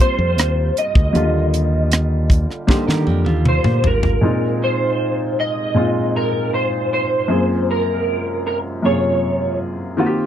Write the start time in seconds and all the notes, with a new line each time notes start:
Already playing: C3 G3 A#3 C4 F4
0.00 C5, kick, closed hi-hat
0.19 F2
0.38 D#2, cross-stick, closed hi-hat
0.77 D#5, closed hi-hat
0.95 D2, kick
1.13 D#2 D3 G3 A#3 F4, closed hi-hat
1.54 closed hi-hat
1.92 cross-stick, closed hi-hat
2.30 kick, closed hi-hat
2.51 cross-stick
2.67 D3 G3 A#3 D#4 G4 C5, kick, snare
2.87 D#3 D4 A#4, snare
3.07 F2 A#3 G4, high tom
3.26 D#2 F4, high tom
3.45 C5, mid tom
3.64 A#2, mid tom
3.84 G#1 A#4, floor tom
4.03 floor tom
4.21 A#2 C3 G#3 C4 D#4 F4
4.64 C5
5.40 D#5
5.74 A#2 G#3 C4 D#4 F4
6.16 A#4
6.54 C5
6.93 C5
7.28 F#2 G#3 A#3 C4 F4 G#4
7.71 A#4
8.47 A#4
8.82 F#2 C3 A#3 F4 G#4 C#5
9.97 D#2 C3 D#3 G3 A#3 C4 F4 F#4
10.06 G4